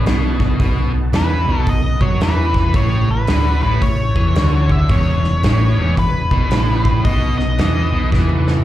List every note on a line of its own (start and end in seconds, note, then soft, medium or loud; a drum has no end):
0.00 0.58 D4 medium
0.00 0.58 E4 medium
0.00 0.58 G#4 medium
0.00 0.58 B4 medium
0.06 0.56 B1 medium
0.06 0.59 B2 loud
0.06 snare loud
0.06 open hi-hat soft
0.40 kick medium
0.40 snare soft
0.60 0.91 B1 medium
0.60 0.93 B2 loud
0.60 2.73 B3 medium
0.60 2.73 D#4 medium
0.60 2.73 F#4 medium
0.60 2.73 A4 medium
0.60 kick loud
0.60 open hi-hat soft
0.94 1.12 B1 medium
0.94 1.10 B2 medium
1.13 1.45 E2 medium
1.13 1.46 E3 medium
1.13 1.59 B4 medium
1.13 snare loud
1.13 open hi-hat soft
1.47 1.66 B1 medium
1.47 1.67 B2 medium
1.59 1.70 A4 medium
1.66 1.99 B1 medium
1.66 1.95 B2 medium
1.66 2.01 D#5 medium
1.66 kick medium
1.66 open hi-hat soft
2.01 2.20 F#2 medium
2.01 2.21 F#3 medium
2.01 2.20 C#5 medium
2.01 kick medium
2.20 2.71 E2 medium
2.20 2.74 E3 loud
2.20 2.77 B4 medium
2.20 snare loud
2.20 open hi-hat soft
2.54 kick medium
2.54 snare soft
2.74 3.06 A1 medium
2.74 3.08 A2 loud
2.74 4.88 C#4 medium
2.74 4.88 E4 medium
2.74 4.88 G4 medium
2.74 4.88 A4 medium
2.74 3.10 C#5 medium
2.74 kick loud
2.74 open hi-hat soft
3.08 3.27 A1 medium
3.08 3.25 A2 medium
3.08 3.62 B4 medium
3.27 3.60 D2 medium
3.27 3.61 D3 loud
3.27 snare loud
3.27 open hi-hat medium
3.62 3.81 A1 medium
3.62 3.82 A2 medium
3.62 3.81 B4 medium
3.82 4.14 A1 medium
3.82 4.10 A2 medium
3.82 4.71 C#5 loud
3.82 kick medium
3.82 open hi-hat medium
4.16 4.35 E2 medium
4.16 4.35 E3 loud
4.16 kick medium
4.35 4.86 D2 medium
4.35 4.89 D3 loud
4.35 snare loud
4.35 open hi-hat medium
4.69 4.91 E5 medium
4.69 kick medium
4.89 5.21 E1 medium
4.89 5.23 E2 loud
4.89 7.03 D4 medium
4.89 7.03 E4 medium
4.89 7.03 G#4 medium
4.89 7.03 B4 medium
4.89 5.94 C#5 loud
4.89 kick loud
4.89 open hi-hat soft
5.23 5.42 E1 medium
5.23 5.40 E2 medium
5.23 snare soft
5.43 5.75 A1 medium
5.43 5.77 A2 medium
5.43 snare loud
5.43 open hi-hat soft
5.78 5.96 E1 medium
5.78 5.97 E2 medium
5.97 6.29 E1 medium
5.97 6.25 E2 medium
5.97 7.09 B4 medium
5.97 kick medium
5.97 open hi-hat soft
6.31 6.50 B1 medium
6.31 6.51 B2 medium
6.31 kick medium
6.51 7.01 A1 medium
6.51 7.05 A2 loud
6.51 snare loud
6.51 open hi-hat soft
6.85 kick medium
7.05 7.37 B1 medium
7.05 7.37 B2 loud
7.05 8.64 D#4 medium
7.05 8.64 F#4 medium
7.05 8.64 A4 medium
7.05 8.64 B4 medium
7.05 7.37 D#5 medium
7.05 kick loud
7.05 open hi-hat soft
7.38 7.57 B1 medium
7.38 7.55 B2 medium
7.38 8.08 D#5 medium
7.38 snare soft
7.58 7.90 E2 medium
7.58 7.92 E3 loud
7.58 snare loud
7.58 open hi-hat soft
7.92 8.11 B1 medium
7.92 8.12 B2 medium
8.12 8.63 E2 medium
8.12 8.64 E3 loud
8.12 kick medium
8.12 snare medium
8.29 high tom medium
8.48 snare medium
8.57 mid tom medium